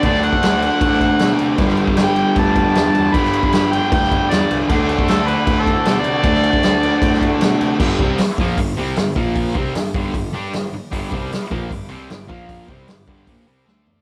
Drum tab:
CC |x-x-x-x-x-x-x-x-|x-x-x-x-x-x-x-x-|x-x-x-x-x-x-x-x-|x-x-x-x-x-x-x-x-|
HH |----------------|----------------|----------------|----------------|
SD |-o--o----o--o---|-o--o-------o---|-o--o----o--o---|----o-------o---|
FT |----------------|----------------|----------------|----------------|
BD |o--o----o-o-----|o--o----o-o-----|o--o----o-o-----|o--o----o-o-----|

CC |x-x-x-x-x-x-x-x-|x---------------|----------------|----------------|
HH |----------------|----o---o---o---|o---o---o---o---|o---o---o---o---|
SD |-o--o----o--o---|----o-------o---|----o-------o---|----o-------o---|
FT |----------------|----------------|----------------|----------------|
BD |o--o----o-o-----|o-o---o-o-----o-|o-o---o-o-------|o-o---o-o-----o-|

CC |----------------|
HH |o---o---o-------|
SD |----o-------o---|
FT |--------------o-|
BD |o-o---o-o-------|